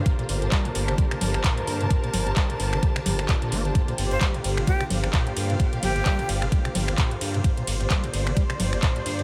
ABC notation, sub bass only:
X:1
M:4/4
L:1/8
Q:"Swing 16ths" 1/4=130
K:Gm
V:1 name="Sub bass" clef=bass
z G,,, z G,,, z G,,, z G,, | z G,,, z G,,, z G,,, z G,,, | z G,,, z G,,, z G,,, z G,, | z G,,, z G,,, z G,,, z G,, |
z G,,, z G,,, z G,,, z G,, |]